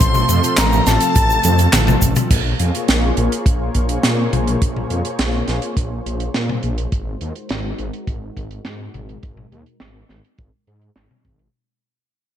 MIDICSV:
0, 0, Header, 1, 6, 480
1, 0, Start_track
1, 0, Time_signature, 4, 2, 24, 8
1, 0, Key_signature, -5, "minor"
1, 0, Tempo, 576923
1, 10287, End_track
2, 0, Start_track
2, 0, Title_t, "Soft synth lead"
2, 0, Program_c, 0, 80
2, 0, Note_on_c, 0, 84, 106
2, 480, Note_on_c, 0, 82, 107
2, 492, Note_off_c, 0, 84, 0
2, 721, Note_on_c, 0, 81, 108
2, 733, Note_off_c, 0, 82, 0
2, 1680, Note_off_c, 0, 81, 0
2, 10287, End_track
3, 0, Start_track
3, 0, Title_t, "String machine"
3, 0, Program_c, 1, 50
3, 0, Note_on_c, 1, 84, 116
3, 448, Note_off_c, 1, 84, 0
3, 482, Note_on_c, 1, 82, 101
3, 704, Note_off_c, 1, 82, 0
3, 721, Note_on_c, 1, 81, 105
3, 1647, Note_off_c, 1, 81, 0
3, 10287, End_track
4, 0, Start_track
4, 0, Title_t, "Analog synth pad"
4, 0, Program_c, 2, 89
4, 0, Note_on_c, 2, 48, 81
4, 0, Note_on_c, 2, 53, 74
4, 0, Note_on_c, 2, 57, 91
4, 1887, Note_off_c, 2, 48, 0
4, 1887, Note_off_c, 2, 53, 0
4, 1887, Note_off_c, 2, 57, 0
4, 1920, Note_on_c, 2, 65, 71
4, 1920, Note_on_c, 2, 68, 72
4, 1920, Note_on_c, 2, 72, 71
4, 1920, Note_on_c, 2, 73, 87
4, 1921, Note_on_c, 2, 58, 80
4, 5727, Note_off_c, 2, 58, 0
4, 5727, Note_off_c, 2, 65, 0
4, 5727, Note_off_c, 2, 68, 0
4, 5727, Note_off_c, 2, 73, 0
4, 5759, Note_on_c, 2, 56, 75
4, 5760, Note_on_c, 2, 63, 73
4, 5760, Note_on_c, 2, 66, 70
4, 5760, Note_on_c, 2, 70, 72
4, 9566, Note_off_c, 2, 56, 0
4, 9566, Note_off_c, 2, 63, 0
4, 9567, Note_off_c, 2, 66, 0
4, 9567, Note_off_c, 2, 70, 0
4, 9567, Note_off_c, 2, 72, 0
4, 10287, End_track
5, 0, Start_track
5, 0, Title_t, "Detuned saw bass"
5, 0, Program_c, 3, 39
5, 6, Note_on_c, 3, 33, 104
5, 197, Note_off_c, 3, 33, 0
5, 240, Note_on_c, 3, 41, 82
5, 337, Note_off_c, 3, 41, 0
5, 479, Note_on_c, 3, 33, 82
5, 674, Note_off_c, 3, 33, 0
5, 720, Note_on_c, 3, 33, 107
5, 817, Note_off_c, 3, 33, 0
5, 963, Note_on_c, 3, 33, 84
5, 1156, Note_off_c, 3, 33, 0
5, 1201, Note_on_c, 3, 41, 92
5, 1394, Note_off_c, 3, 41, 0
5, 1440, Note_on_c, 3, 33, 89
5, 1634, Note_off_c, 3, 33, 0
5, 1679, Note_on_c, 3, 33, 109
5, 1777, Note_off_c, 3, 33, 0
5, 1919, Note_on_c, 3, 34, 104
5, 2114, Note_off_c, 3, 34, 0
5, 2160, Note_on_c, 3, 41, 83
5, 2257, Note_off_c, 3, 41, 0
5, 2401, Note_on_c, 3, 34, 81
5, 2594, Note_off_c, 3, 34, 0
5, 2640, Note_on_c, 3, 34, 105
5, 2737, Note_off_c, 3, 34, 0
5, 2878, Note_on_c, 3, 34, 94
5, 3073, Note_off_c, 3, 34, 0
5, 3119, Note_on_c, 3, 34, 98
5, 3313, Note_off_c, 3, 34, 0
5, 3360, Note_on_c, 3, 46, 94
5, 3554, Note_off_c, 3, 46, 0
5, 3600, Note_on_c, 3, 34, 97
5, 3794, Note_off_c, 3, 34, 0
5, 3842, Note_on_c, 3, 34, 105
5, 4035, Note_off_c, 3, 34, 0
5, 4079, Note_on_c, 3, 41, 82
5, 4177, Note_off_c, 3, 41, 0
5, 4319, Note_on_c, 3, 34, 82
5, 4513, Note_off_c, 3, 34, 0
5, 4559, Note_on_c, 3, 34, 106
5, 4656, Note_off_c, 3, 34, 0
5, 4798, Note_on_c, 3, 34, 94
5, 4993, Note_off_c, 3, 34, 0
5, 5039, Note_on_c, 3, 34, 99
5, 5234, Note_off_c, 3, 34, 0
5, 5281, Note_on_c, 3, 46, 95
5, 5474, Note_off_c, 3, 46, 0
5, 5520, Note_on_c, 3, 34, 101
5, 5714, Note_off_c, 3, 34, 0
5, 5760, Note_on_c, 3, 32, 105
5, 5954, Note_off_c, 3, 32, 0
5, 6001, Note_on_c, 3, 39, 81
5, 6097, Note_off_c, 3, 39, 0
5, 6241, Note_on_c, 3, 32, 84
5, 6434, Note_off_c, 3, 32, 0
5, 6481, Note_on_c, 3, 32, 106
5, 6577, Note_off_c, 3, 32, 0
5, 6718, Note_on_c, 3, 32, 93
5, 6913, Note_off_c, 3, 32, 0
5, 6960, Note_on_c, 3, 32, 97
5, 7154, Note_off_c, 3, 32, 0
5, 7200, Note_on_c, 3, 44, 92
5, 7394, Note_off_c, 3, 44, 0
5, 7440, Note_on_c, 3, 32, 95
5, 7634, Note_off_c, 3, 32, 0
5, 7681, Note_on_c, 3, 32, 98
5, 7874, Note_off_c, 3, 32, 0
5, 7919, Note_on_c, 3, 39, 82
5, 8017, Note_off_c, 3, 39, 0
5, 8160, Note_on_c, 3, 32, 80
5, 8354, Note_off_c, 3, 32, 0
5, 8399, Note_on_c, 3, 32, 102
5, 8497, Note_off_c, 3, 32, 0
5, 8641, Note_on_c, 3, 32, 100
5, 8737, Note_off_c, 3, 32, 0
5, 8880, Note_on_c, 3, 44, 85
5, 9074, Note_off_c, 3, 44, 0
5, 9119, Note_on_c, 3, 32, 78
5, 9217, Note_off_c, 3, 32, 0
5, 9358, Note_on_c, 3, 32, 91
5, 9553, Note_off_c, 3, 32, 0
5, 10287, End_track
6, 0, Start_track
6, 0, Title_t, "Drums"
6, 1, Note_on_c, 9, 82, 54
6, 5, Note_on_c, 9, 42, 112
6, 6, Note_on_c, 9, 36, 118
6, 84, Note_off_c, 9, 82, 0
6, 88, Note_off_c, 9, 42, 0
6, 89, Note_off_c, 9, 36, 0
6, 119, Note_on_c, 9, 82, 50
6, 121, Note_on_c, 9, 45, 58
6, 202, Note_off_c, 9, 82, 0
6, 205, Note_off_c, 9, 45, 0
6, 239, Note_on_c, 9, 42, 76
6, 241, Note_on_c, 9, 82, 77
6, 322, Note_off_c, 9, 42, 0
6, 325, Note_off_c, 9, 82, 0
6, 362, Note_on_c, 9, 82, 51
6, 366, Note_on_c, 9, 42, 78
6, 445, Note_off_c, 9, 82, 0
6, 449, Note_off_c, 9, 42, 0
6, 477, Note_on_c, 9, 39, 111
6, 482, Note_on_c, 9, 82, 60
6, 483, Note_on_c, 9, 38, 121
6, 487, Note_on_c, 9, 42, 104
6, 560, Note_off_c, 9, 39, 0
6, 565, Note_off_c, 9, 82, 0
6, 567, Note_off_c, 9, 38, 0
6, 570, Note_off_c, 9, 42, 0
6, 604, Note_on_c, 9, 82, 48
6, 687, Note_off_c, 9, 82, 0
6, 720, Note_on_c, 9, 42, 75
6, 720, Note_on_c, 9, 82, 79
6, 722, Note_on_c, 9, 38, 60
6, 803, Note_off_c, 9, 42, 0
6, 803, Note_off_c, 9, 82, 0
6, 805, Note_off_c, 9, 38, 0
6, 836, Note_on_c, 9, 42, 82
6, 842, Note_on_c, 9, 82, 47
6, 920, Note_off_c, 9, 42, 0
6, 926, Note_off_c, 9, 82, 0
6, 961, Note_on_c, 9, 82, 54
6, 962, Note_on_c, 9, 42, 105
6, 964, Note_on_c, 9, 36, 112
6, 1044, Note_off_c, 9, 82, 0
6, 1045, Note_off_c, 9, 42, 0
6, 1047, Note_off_c, 9, 36, 0
6, 1081, Note_on_c, 9, 82, 53
6, 1165, Note_off_c, 9, 82, 0
6, 1193, Note_on_c, 9, 42, 76
6, 1198, Note_on_c, 9, 82, 85
6, 1205, Note_on_c, 9, 48, 66
6, 1276, Note_off_c, 9, 42, 0
6, 1281, Note_off_c, 9, 82, 0
6, 1288, Note_off_c, 9, 48, 0
6, 1318, Note_on_c, 9, 82, 49
6, 1323, Note_on_c, 9, 42, 84
6, 1401, Note_off_c, 9, 82, 0
6, 1406, Note_off_c, 9, 42, 0
6, 1436, Note_on_c, 9, 42, 99
6, 1438, Note_on_c, 9, 47, 78
6, 1439, Note_on_c, 9, 39, 104
6, 1441, Note_on_c, 9, 38, 111
6, 1447, Note_on_c, 9, 82, 56
6, 1519, Note_off_c, 9, 42, 0
6, 1522, Note_off_c, 9, 47, 0
6, 1523, Note_off_c, 9, 39, 0
6, 1524, Note_off_c, 9, 38, 0
6, 1530, Note_off_c, 9, 82, 0
6, 1557, Note_on_c, 9, 47, 68
6, 1565, Note_on_c, 9, 45, 97
6, 1565, Note_on_c, 9, 82, 44
6, 1640, Note_off_c, 9, 47, 0
6, 1648, Note_off_c, 9, 45, 0
6, 1649, Note_off_c, 9, 82, 0
6, 1677, Note_on_c, 9, 82, 86
6, 1680, Note_on_c, 9, 36, 64
6, 1686, Note_on_c, 9, 42, 72
6, 1761, Note_off_c, 9, 82, 0
6, 1763, Note_off_c, 9, 36, 0
6, 1769, Note_off_c, 9, 42, 0
6, 1794, Note_on_c, 9, 82, 54
6, 1798, Note_on_c, 9, 42, 78
6, 1801, Note_on_c, 9, 45, 84
6, 1877, Note_off_c, 9, 82, 0
6, 1881, Note_off_c, 9, 42, 0
6, 1884, Note_off_c, 9, 45, 0
6, 1919, Note_on_c, 9, 36, 115
6, 1919, Note_on_c, 9, 42, 105
6, 1922, Note_on_c, 9, 49, 92
6, 2002, Note_off_c, 9, 42, 0
6, 2003, Note_off_c, 9, 36, 0
6, 2005, Note_off_c, 9, 49, 0
6, 2159, Note_on_c, 9, 42, 85
6, 2242, Note_off_c, 9, 42, 0
6, 2286, Note_on_c, 9, 42, 71
6, 2369, Note_off_c, 9, 42, 0
6, 2399, Note_on_c, 9, 42, 94
6, 2402, Note_on_c, 9, 38, 124
6, 2482, Note_off_c, 9, 42, 0
6, 2485, Note_off_c, 9, 38, 0
6, 2637, Note_on_c, 9, 42, 73
6, 2721, Note_off_c, 9, 42, 0
6, 2764, Note_on_c, 9, 42, 84
6, 2847, Note_off_c, 9, 42, 0
6, 2878, Note_on_c, 9, 36, 125
6, 2880, Note_on_c, 9, 42, 102
6, 2961, Note_off_c, 9, 36, 0
6, 2963, Note_off_c, 9, 42, 0
6, 3116, Note_on_c, 9, 42, 83
6, 3119, Note_on_c, 9, 36, 59
6, 3200, Note_off_c, 9, 42, 0
6, 3202, Note_off_c, 9, 36, 0
6, 3236, Note_on_c, 9, 42, 83
6, 3319, Note_off_c, 9, 42, 0
6, 3356, Note_on_c, 9, 38, 118
6, 3361, Note_on_c, 9, 42, 103
6, 3439, Note_off_c, 9, 38, 0
6, 3444, Note_off_c, 9, 42, 0
6, 3602, Note_on_c, 9, 42, 73
6, 3602, Note_on_c, 9, 45, 95
6, 3685, Note_off_c, 9, 42, 0
6, 3685, Note_off_c, 9, 45, 0
6, 3723, Note_on_c, 9, 42, 81
6, 3806, Note_off_c, 9, 42, 0
6, 3842, Note_on_c, 9, 36, 127
6, 3842, Note_on_c, 9, 42, 102
6, 3925, Note_off_c, 9, 36, 0
6, 3925, Note_off_c, 9, 42, 0
6, 3964, Note_on_c, 9, 45, 56
6, 4048, Note_off_c, 9, 45, 0
6, 4079, Note_on_c, 9, 42, 80
6, 4162, Note_off_c, 9, 42, 0
6, 4200, Note_on_c, 9, 42, 77
6, 4284, Note_off_c, 9, 42, 0
6, 4316, Note_on_c, 9, 42, 97
6, 4319, Note_on_c, 9, 38, 124
6, 4399, Note_off_c, 9, 42, 0
6, 4403, Note_off_c, 9, 38, 0
6, 4556, Note_on_c, 9, 42, 72
6, 4558, Note_on_c, 9, 38, 56
6, 4640, Note_off_c, 9, 42, 0
6, 4642, Note_off_c, 9, 38, 0
6, 4676, Note_on_c, 9, 42, 84
6, 4759, Note_off_c, 9, 42, 0
6, 4798, Note_on_c, 9, 36, 113
6, 4799, Note_on_c, 9, 42, 99
6, 4881, Note_off_c, 9, 36, 0
6, 4882, Note_off_c, 9, 42, 0
6, 5045, Note_on_c, 9, 42, 80
6, 5128, Note_off_c, 9, 42, 0
6, 5159, Note_on_c, 9, 42, 70
6, 5242, Note_off_c, 9, 42, 0
6, 5278, Note_on_c, 9, 38, 114
6, 5279, Note_on_c, 9, 42, 94
6, 5361, Note_off_c, 9, 38, 0
6, 5363, Note_off_c, 9, 42, 0
6, 5404, Note_on_c, 9, 45, 84
6, 5487, Note_off_c, 9, 45, 0
6, 5514, Note_on_c, 9, 42, 80
6, 5597, Note_off_c, 9, 42, 0
6, 5639, Note_on_c, 9, 42, 80
6, 5722, Note_off_c, 9, 42, 0
6, 5758, Note_on_c, 9, 42, 98
6, 5759, Note_on_c, 9, 36, 127
6, 5841, Note_off_c, 9, 42, 0
6, 5843, Note_off_c, 9, 36, 0
6, 5998, Note_on_c, 9, 42, 77
6, 6081, Note_off_c, 9, 42, 0
6, 6119, Note_on_c, 9, 42, 65
6, 6202, Note_off_c, 9, 42, 0
6, 6233, Note_on_c, 9, 42, 94
6, 6244, Note_on_c, 9, 38, 127
6, 6317, Note_off_c, 9, 42, 0
6, 6327, Note_off_c, 9, 38, 0
6, 6477, Note_on_c, 9, 42, 70
6, 6560, Note_off_c, 9, 42, 0
6, 6602, Note_on_c, 9, 42, 78
6, 6685, Note_off_c, 9, 42, 0
6, 6717, Note_on_c, 9, 36, 119
6, 6719, Note_on_c, 9, 42, 94
6, 6801, Note_off_c, 9, 36, 0
6, 6802, Note_off_c, 9, 42, 0
6, 6960, Note_on_c, 9, 36, 65
6, 6964, Note_on_c, 9, 42, 82
6, 7044, Note_off_c, 9, 36, 0
6, 7047, Note_off_c, 9, 42, 0
6, 7078, Note_on_c, 9, 42, 78
6, 7161, Note_off_c, 9, 42, 0
6, 7195, Note_on_c, 9, 38, 119
6, 7197, Note_on_c, 9, 42, 96
6, 7278, Note_off_c, 9, 38, 0
6, 7280, Note_off_c, 9, 42, 0
6, 7439, Note_on_c, 9, 42, 75
6, 7441, Note_on_c, 9, 45, 87
6, 7522, Note_off_c, 9, 42, 0
6, 7524, Note_off_c, 9, 45, 0
6, 7563, Note_on_c, 9, 42, 72
6, 7646, Note_off_c, 9, 42, 0
6, 7677, Note_on_c, 9, 42, 98
6, 7681, Note_on_c, 9, 36, 127
6, 7761, Note_off_c, 9, 42, 0
6, 7764, Note_off_c, 9, 36, 0
6, 7798, Note_on_c, 9, 45, 60
6, 7881, Note_off_c, 9, 45, 0
6, 7922, Note_on_c, 9, 42, 66
6, 8006, Note_off_c, 9, 42, 0
6, 8039, Note_on_c, 9, 42, 65
6, 8122, Note_off_c, 9, 42, 0
6, 8154, Note_on_c, 9, 38, 111
6, 8157, Note_on_c, 9, 42, 98
6, 8237, Note_off_c, 9, 38, 0
6, 8240, Note_off_c, 9, 42, 0
6, 8397, Note_on_c, 9, 38, 61
6, 8402, Note_on_c, 9, 42, 65
6, 8480, Note_off_c, 9, 38, 0
6, 8485, Note_off_c, 9, 42, 0
6, 8525, Note_on_c, 9, 42, 78
6, 8608, Note_off_c, 9, 42, 0
6, 8635, Note_on_c, 9, 42, 82
6, 8641, Note_on_c, 9, 36, 121
6, 8718, Note_off_c, 9, 42, 0
6, 8724, Note_off_c, 9, 36, 0
6, 8881, Note_on_c, 9, 42, 75
6, 8964, Note_off_c, 9, 42, 0
6, 8999, Note_on_c, 9, 42, 63
6, 9082, Note_off_c, 9, 42, 0
6, 9116, Note_on_c, 9, 38, 115
6, 9120, Note_on_c, 9, 42, 94
6, 9199, Note_off_c, 9, 38, 0
6, 9203, Note_off_c, 9, 42, 0
6, 9242, Note_on_c, 9, 45, 89
6, 9325, Note_off_c, 9, 45, 0
6, 9359, Note_on_c, 9, 36, 60
6, 9359, Note_on_c, 9, 42, 70
6, 9442, Note_off_c, 9, 36, 0
6, 9442, Note_off_c, 9, 42, 0
6, 9478, Note_on_c, 9, 42, 71
6, 9561, Note_off_c, 9, 42, 0
6, 10287, End_track
0, 0, End_of_file